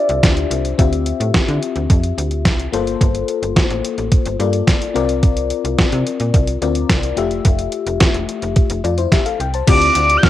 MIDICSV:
0, 0, Header, 1, 6, 480
1, 0, Start_track
1, 0, Key_signature, -1, "minor"
1, 0, Tempo, 555556
1, 681, Time_signature, 4, 2, 24, 8
1, 8896, End_track
2, 0, Start_track
2, 0, Title_t, "Analog synth lead"
2, 0, Program_c, 0, 81
2, 0, Note_on_c, 0, 74, 89
2, 445, Note_off_c, 0, 74, 0
2, 8373, Note_on_c, 0, 86, 107
2, 8788, Note_on_c, 0, 91, 78
2, 8801, Note_off_c, 0, 86, 0
2, 8840, Note_on_c, 0, 89, 111
2, 8853, Note_off_c, 0, 91, 0
2, 8896, Note_off_c, 0, 89, 0
2, 8896, End_track
3, 0, Start_track
3, 0, Title_t, "FM electric piano"
3, 0, Program_c, 1, 5
3, 0, Note_on_c, 1, 62, 64
3, 0, Note_on_c, 1, 65, 58
3, 0, Note_on_c, 1, 67, 56
3, 0, Note_on_c, 1, 72, 57
3, 0, Note_on_c, 1, 76, 73
3, 659, Note_off_c, 1, 62, 0
3, 661, Note_off_c, 1, 65, 0
3, 662, Note_off_c, 1, 67, 0
3, 664, Note_off_c, 1, 72, 0
3, 667, Note_off_c, 1, 76, 0
3, 673, Note_on_c, 1, 60, 66
3, 677, Note_on_c, 1, 65, 58
3, 681, Note_on_c, 1, 67, 60
3, 685, Note_on_c, 1, 76, 74
3, 2323, Note_off_c, 1, 60, 0
3, 2325, Note_off_c, 1, 65, 0
3, 2327, Note_off_c, 1, 67, 0
3, 2329, Note_off_c, 1, 76, 0
3, 2353, Note_on_c, 1, 58, 74
3, 2359, Note_on_c, 1, 65, 62
3, 2365, Note_on_c, 1, 69, 70
3, 2369, Note_on_c, 1, 72, 85
3, 3768, Note_off_c, 1, 58, 0
3, 3771, Note_off_c, 1, 65, 0
3, 3774, Note_off_c, 1, 69, 0
3, 3776, Note_off_c, 1, 72, 0
3, 3798, Note_on_c, 1, 58, 55
3, 3798, Note_on_c, 1, 65, 55
3, 3804, Note_on_c, 1, 69, 54
3, 3806, Note_on_c, 1, 74, 63
3, 4266, Note_off_c, 1, 65, 0
3, 4269, Note_on_c, 1, 60, 70
3, 4274, Note_off_c, 1, 74, 0
3, 4276, Note_on_c, 1, 65, 68
3, 4278, Note_on_c, 1, 70, 69
3, 4279, Note_off_c, 1, 58, 0
3, 4282, Note_off_c, 1, 69, 0
3, 4284, Note_on_c, 1, 74, 84
3, 5686, Note_off_c, 1, 60, 0
3, 5690, Note_off_c, 1, 65, 0
3, 5691, Note_off_c, 1, 70, 0
3, 5694, Note_off_c, 1, 74, 0
3, 5718, Note_on_c, 1, 60, 62
3, 5718, Note_on_c, 1, 65, 57
3, 5721, Note_on_c, 1, 70, 56
3, 5724, Note_on_c, 1, 74, 69
3, 6181, Note_off_c, 1, 65, 0
3, 6191, Note_on_c, 1, 57, 79
3, 6192, Note_on_c, 1, 65, 65
3, 6198, Note_on_c, 1, 67, 69
3, 6199, Note_off_c, 1, 60, 0
3, 6201, Note_off_c, 1, 70, 0
3, 6203, Note_off_c, 1, 74, 0
3, 6203, Note_on_c, 1, 76, 77
3, 7607, Note_off_c, 1, 65, 0
3, 7611, Note_off_c, 1, 67, 0
3, 7613, Note_off_c, 1, 76, 0
3, 7637, Note_on_c, 1, 74, 62
3, 7643, Note_on_c, 1, 65, 52
3, 7753, Note_off_c, 1, 74, 0
3, 7756, Note_off_c, 1, 65, 0
3, 7762, Note_on_c, 1, 72, 62
3, 7768, Note_on_c, 1, 64, 55
3, 7875, Note_off_c, 1, 72, 0
3, 7879, Note_off_c, 1, 64, 0
3, 7880, Note_on_c, 1, 76, 73
3, 7886, Note_on_c, 1, 67, 63
3, 7994, Note_off_c, 1, 76, 0
3, 7997, Note_on_c, 1, 77, 67
3, 7998, Note_off_c, 1, 67, 0
3, 8002, Note_on_c, 1, 69, 57
3, 8081, Note_off_c, 1, 57, 0
3, 8113, Note_off_c, 1, 77, 0
3, 8116, Note_off_c, 1, 69, 0
3, 8126, Note_on_c, 1, 79, 62
3, 8238, Note_off_c, 1, 79, 0
3, 8245, Note_on_c, 1, 81, 59
3, 8250, Note_on_c, 1, 72, 49
3, 8355, Note_on_c, 1, 60, 61
3, 8357, Note_on_c, 1, 64, 58
3, 8361, Note_on_c, 1, 65, 61
3, 8365, Note_on_c, 1, 67, 60
3, 8368, Note_on_c, 1, 74, 75
3, 8471, Note_off_c, 1, 81, 0
3, 8474, Note_off_c, 1, 72, 0
3, 8896, Note_off_c, 1, 60, 0
3, 8896, Note_off_c, 1, 64, 0
3, 8896, Note_off_c, 1, 65, 0
3, 8896, Note_off_c, 1, 67, 0
3, 8896, Note_off_c, 1, 74, 0
3, 8896, End_track
4, 0, Start_track
4, 0, Title_t, "Analog polysynth"
4, 0, Program_c, 2, 90
4, 8839, Note_on_c, 2, 52, 89
4, 8842, Note_on_c, 2, 60, 90
4, 8842, Note_on_c, 2, 67, 96
4, 8896, Note_off_c, 2, 52, 0
4, 8896, Note_off_c, 2, 60, 0
4, 8896, Note_off_c, 2, 67, 0
4, 8896, End_track
5, 0, Start_track
5, 0, Title_t, "FM bass"
5, 0, Program_c, 3, 39
5, 82, Note_on_c, 3, 36, 98
5, 179, Note_off_c, 3, 36, 0
5, 202, Note_on_c, 3, 38, 87
5, 397, Note_off_c, 3, 38, 0
5, 438, Note_on_c, 3, 36, 90
5, 635, Note_off_c, 3, 36, 0
5, 680, Note_on_c, 3, 38, 107
5, 974, Note_off_c, 3, 38, 0
5, 1039, Note_on_c, 3, 45, 89
5, 1137, Note_off_c, 3, 45, 0
5, 1281, Note_on_c, 3, 50, 98
5, 1379, Note_off_c, 3, 50, 0
5, 1518, Note_on_c, 3, 38, 87
5, 1617, Note_off_c, 3, 38, 0
5, 1640, Note_on_c, 3, 41, 95
5, 1836, Note_off_c, 3, 41, 0
5, 1880, Note_on_c, 3, 38, 87
5, 2119, Note_on_c, 3, 36, 94
5, 2132, Note_off_c, 3, 38, 0
5, 2315, Note_off_c, 3, 36, 0
5, 2361, Note_on_c, 3, 31, 85
5, 2557, Note_off_c, 3, 31, 0
5, 2601, Note_on_c, 3, 31, 110
5, 2797, Note_off_c, 3, 31, 0
5, 2959, Note_on_c, 3, 31, 90
5, 3058, Note_off_c, 3, 31, 0
5, 3200, Note_on_c, 3, 33, 83
5, 3298, Note_off_c, 3, 33, 0
5, 3440, Note_on_c, 3, 33, 86
5, 3538, Note_off_c, 3, 33, 0
5, 3682, Note_on_c, 3, 31, 91
5, 3779, Note_off_c, 3, 31, 0
5, 3797, Note_on_c, 3, 43, 96
5, 3994, Note_off_c, 3, 43, 0
5, 4281, Note_on_c, 3, 36, 94
5, 4770, Note_off_c, 3, 36, 0
5, 4877, Note_on_c, 3, 36, 81
5, 4976, Note_off_c, 3, 36, 0
5, 4998, Note_on_c, 3, 48, 47
5, 5047, Note_off_c, 3, 48, 0
5, 5118, Note_on_c, 3, 48, 98
5, 5217, Note_off_c, 3, 48, 0
5, 5358, Note_on_c, 3, 46, 87
5, 5457, Note_off_c, 3, 46, 0
5, 5478, Note_on_c, 3, 36, 104
5, 5675, Note_off_c, 3, 36, 0
5, 5717, Note_on_c, 3, 38, 101
5, 5914, Note_off_c, 3, 38, 0
5, 5956, Note_on_c, 3, 36, 87
5, 6154, Note_off_c, 3, 36, 0
5, 6198, Note_on_c, 3, 29, 101
5, 6395, Note_off_c, 3, 29, 0
5, 6440, Note_on_c, 3, 29, 113
5, 6636, Note_off_c, 3, 29, 0
5, 6796, Note_on_c, 3, 29, 102
5, 6896, Note_off_c, 3, 29, 0
5, 7038, Note_on_c, 3, 28, 85
5, 7137, Note_off_c, 3, 28, 0
5, 7280, Note_on_c, 3, 29, 93
5, 7378, Note_off_c, 3, 29, 0
5, 7519, Note_on_c, 3, 29, 91
5, 7618, Note_off_c, 3, 29, 0
5, 7638, Note_on_c, 3, 41, 89
5, 7835, Note_off_c, 3, 41, 0
5, 8121, Note_on_c, 3, 36, 83
5, 8316, Note_off_c, 3, 36, 0
5, 8362, Note_on_c, 3, 38, 121
5, 8557, Note_off_c, 3, 38, 0
5, 8601, Note_on_c, 3, 38, 91
5, 8796, Note_off_c, 3, 38, 0
5, 8896, End_track
6, 0, Start_track
6, 0, Title_t, "Drums"
6, 79, Note_on_c, 9, 42, 55
6, 165, Note_off_c, 9, 42, 0
6, 201, Note_on_c, 9, 36, 127
6, 203, Note_on_c, 9, 38, 111
6, 204, Note_on_c, 9, 42, 102
6, 287, Note_off_c, 9, 36, 0
6, 289, Note_off_c, 9, 38, 0
6, 291, Note_off_c, 9, 42, 0
6, 320, Note_on_c, 9, 42, 54
6, 406, Note_off_c, 9, 42, 0
6, 443, Note_on_c, 9, 42, 76
6, 529, Note_off_c, 9, 42, 0
6, 561, Note_on_c, 9, 42, 56
6, 648, Note_off_c, 9, 42, 0
6, 682, Note_on_c, 9, 36, 94
6, 682, Note_on_c, 9, 42, 77
6, 768, Note_off_c, 9, 36, 0
6, 768, Note_off_c, 9, 42, 0
6, 801, Note_on_c, 9, 42, 53
6, 887, Note_off_c, 9, 42, 0
6, 917, Note_on_c, 9, 42, 83
6, 1003, Note_off_c, 9, 42, 0
6, 1043, Note_on_c, 9, 42, 54
6, 1129, Note_off_c, 9, 42, 0
6, 1159, Note_on_c, 9, 42, 82
6, 1160, Note_on_c, 9, 36, 122
6, 1160, Note_on_c, 9, 38, 107
6, 1246, Note_off_c, 9, 36, 0
6, 1246, Note_off_c, 9, 42, 0
6, 1247, Note_off_c, 9, 38, 0
6, 1283, Note_on_c, 9, 42, 45
6, 1369, Note_off_c, 9, 42, 0
6, 1404, Note_on_c, 9, 42, 76
6, 1490, Note_off_c, 9, 42, 0
6, 1517, Note_on_c, 9, 42, 44
6, 1603, Note_off_c, 9, 42, 0
6, 1640, Note_on_c, 9, 36, 106
6, 1640, Note_on_c, 9, 42, 80
6, 1726, Note_off_c, 9, 42, 0
6, 1727, Note_off_c, 9, 36, 0
6, 1757, Note_on_c, 9, 42, 53
6, 1844, Note_off_c, 9, 42, 0
6, 1886, Note_on_c, 9, 42, 70
6, 1972, Note_off_c, 9, 42, 0
6, 1995, Note_on_c, 9, 42, 53
6, 2081, Note_off_c, 9, 42, 0
6, 2119, Note_on_c, 9, 36, 114
6, 2120, Note_on_c, 9, 38, 101
6, 2121, Note_on_c, 9, 42, 88
6, 2205, Note_off_c, 9, 36, 0
6, 2206, Note_off_c, 9, 38, 0
6, 2208, Note_off_c, 9, 42, 0
6, 2243, Note_on_c, 9, 42, 54
6, 2329, Note_off_c, 9, 42, 0
6, 2363, Note_on_c, 9, 42, 61
6, 2449, Note_off_c, 9, 42, 0
6, 2482, Note_on_c, 9, 42, 49
6, 2568, Note_off_c, 9, 42, 0
6, 2600, Note_on_c, 9, 36, 95
6, 2603, Note_on_c, 9, 42, 83
6, 2687, Note_off_c, 9, 36, 0
6, 2689, Note_off_c, 9, 42, 0
6, 2719, Note_on_c, 9, 42, 54
6, 2805, Note_off_c, 9, 42, 0
6, 2836, Note_on_c, 9, 42, 71
6, 2922, Note_off_c, 9, 42, 0
6, 2962, Note_on_c, 9, 42, 58
6, 3048, Note_off_c, 9, 42, 0
6, 3079, Note_on_c, 9, 36, 112
6, 3080, Note_on_c, 9, 42, 80
6, 3081, Note_on_c, 9, 38, 96
6, 3165, Note_off_c, 9, 36, 0
6, 3167, Note_off_c, 9, 42, 0
6, 3168, Note_off_c, 9, 38, 0
6, 3201, Note_on_c, 9, 42, 43
6, 3287, Note_off_c, 9, 42, 0
6, 3323, Note_on_c, 9, 42, 71
6, 3410, Note_off_c, 9, 42, 0
6, 3438, Note_on_c, 9, 42, 44
6, 3524, Note_off_c, 9, 42, 0
6, 3557, Note_on_c, 9, 42, 83
6, 3558, Note_on_c, 9, 36, 106
6, 3644, Note_off_c, 9, 42, 0
6, 3645, Note_off_c, 9, 36, 0
6, 3676, Note_on_c, 9, 42, 52
6, 3763, Note_off_c, 9, 42, 0
6, 3800, Note_on_c, 9, 42, 67
6, 3887, Note_off_c, 9, 42, 0
6, 3913, Note_on_c, 9, 42, 47
6, 4000, Note_off_c, 9, 42, 0
6, 4038, Note_on_c, 9, 36, 116
6, 4040, Note_on_c, 9, 38, 102
6, 4041, Note_on_c, 9, 42, 93
6, 4124, Note_off_c, 9, 36, 0
6, 4126, Note_off_c, 9, 38, 0
6, 4128, Note_off_c, 9, 42, 0
6, 4161, Note_on_c, 9, 42, 49
6, 4248, Note_off_c, 9, 42, 0
6, 4283, Note_on_c, 9, 42, 65
6, 4369, Note_off_c, 9, 42, 0
6, 4397, Note_on_c, 9, 42, 54
6, 4483, Note_off_c, 9, 42, 0
6, 4517, Note_on_c, 9, 42, 83
6, 4518, Note_on_c, 9, 36, 105
6, 4603, Note_off_c, 9, 42, 0
6, 4605, Note_off_c, 9, 36, 0
6, 4637, Note_on_c, 9, 42, 52
6, 4723, Note_off_c, 9, 42, 0
6, 4754, Note_on_c, 9, 42, 73
6, 4840, Note_off_c, 9, 42, 0
6, 4879, Note_on_c, 9, 42, 54
6, 4965, Note_off_c, 9, 42, 0
6, 4997, Note_on_c, 9, 42, 74
6, 4998, Note_on_c, 9, 36, 116
6, 4998, Note_on_c, 9, 38, 105
6, 5083, Note_off_c, 9, 42, 0
6, 5084, Note_off_c, 9, 36, 0
6, 5084, Note_off_c, 9, 38, 0
6, 5116, Note_on_c, 9, 42, 43
6, 5202, Note_off_c, 9, 42, 0
6, 5240, Note_on_c, 9, 42, 75
6, 5327, Note_off_c, 9, 42, 0
6, 5354, Note_on_c, 9, 42, 45
6, 5440, Note_off_c, 9, 42, 0
6, 5477, Note_on_c, 9, 42, 85
6, 5478, Note_on_c, 9, 36, 110
6, 5563, Note_off_c, 9, 42, 0
6, 5564, Note_off_c, 9, 36, 0
6, 5593, Note_on_c, 9, 42, 52
6, 5680, Note_off_c, 9, 42, 0
6, 5718, Note_on_c, 9, 42, 67
6, 5805, Note_off_c, 9, 42, 0
6, 5832, Note_on_c, 9, 42, 53
6, 5919, Note_off_c, 9, 42, 0
6, 5957, Note_on_c, 9, 36, 118
6, 5957, Note_on_c, 9, 38, 102
6, 5959, Note_on_c, 9, 42, 91
6, 6043, Note_off_c, 9, 36, 0
6, 6044, Note_off_c, 9, 38, 0
6, 6045, Note_off_c, 9, 42, 0
6, 6076, Note_on_c, 9, 42, 49
6, 6162, Note_off_c, 9, 42, 0
6, 6195, Note_on_c, 9, 42, 70
6, 6281, Note_off_c, 9, 42, 0
6, 6315, Note_on_c, 9, 42, 51
6, 6401, Note_off_c, 9, 42, 0
6, 6435, Note_on_c, 9, 42, 84
6, 6438, Note_on_c, 9, 36, 98
6, 6522, Note_off_c, 9, 42, 0
6, 6524, Note_off_c, 9, 36, 0
6, 6555, Note_on_c, 9, 42, 56
6, 6641, Note_off_c, 9, 42, 0
6, 6671, Note_on_c, 9, 42, 78
6, 6757, Note_off_c, 9, 42, 0
6, 6796, Note_on_c, 9, 42, 58
6, 6883, Note_off_c, 9, 42, 0
6, 6915, Note_on_c, 9, 42, 83
6, 6916, Note_on_c, 9, 38, 104
6, 6918, Note_on_c, 9, 36, 109
6, 7001, Note_off_c, 9, 42, 0
6, 7002, Note_off_c, 9, 38, 0
6, 7004, Note_off_c, 9, 36, 0
6, 7036, Note_on_c, 9, 42, 46
6, 7122, Note_off_c, 9, 42, 0
6, 7161, Note_on_c, 9, 42, 76
6, 7247, Note_off_c, 9, 42, 0
6, 7277, Note_on_c, 9, 42, 44
6, 7363, Note_off_c, 9, 42, 0
6, 7396, Note_on_c, 9, 42, 81
6, 7399, Note_on_c, 9, 36, 103
6, 7482, Note_off_c, 9, 42, 0
6, 7485, Note_off_c, 9, 36, 0
6, 7515, Note_on_c, 9, 42, 58
6, 7602, Note_off_c, 9, 42, 0
6, 7644, Note_on_c, 9, 42, 62
6, 7731, Note_off_c, 9, 42, 0
6, 7757, Note_on_c, 9, 42, 50
6, 7843, Note_off_c, 9, 42, 0
6, 7879, Note_on_c, 9, 36, 113
6, 7881, Note_on_c, 9, 38, 95
6, 7883, Note_on_c, 9, 42, 91
6, 7965, Note_off_c, 9, 36, 0
6, 7968, Note_off_c, 9, 38, 0
6, 7969, Note_off_c, 9, 42, 0
6, 8000, Note_on_c, 9, 42, 51
6, 8086, Note_off_c, 9, 42, 0
6, 8124, Note_on_c, 9, 42, 62
6, 8210, Note_off_c, 9, 42, 0
6, 8240, Note_on_c, 9, 42, 53
6, 8327, Note_off_c, 9, 42, 0
6, 8359, Note_on_c, 9, 42, 89
6, 8359, Note_on_c, 9, 49, 105
6, 8361, Note_on_c, 9, 36, 116
6, 8445, Note_off_c, 9, 42, 0
6, 8445, Note_off_c, 9, 49, 0
6, 8447, Note_off_c, 9, 36, 0
6, 8481, Note_on_c, 9, 42, 56
6, 8567, Note_off_c, 9, 42, 0
6, 8598, Note_on_c, 9, 42, 87
6, 8685, Note_off_c, 9, 42, 0
6, 8723, Note_on_c, 9, 42, 63
6, 8810, Note_off_c, 9, 42, 0
6, 8841, Note_on_c, 9, 36, 125
6, 8841, Note_on_c, 9, 42, 82
6, 8842, Note_on_c, 9, 38, 121
6, 8896, Note_off_c, 9, 36, 0
6, 8896, Note_off_c, 9, 38, 0
6, 8896, Note_off_c, 9, 42, 0
6, 8896, End_track
0, 0, End_of_file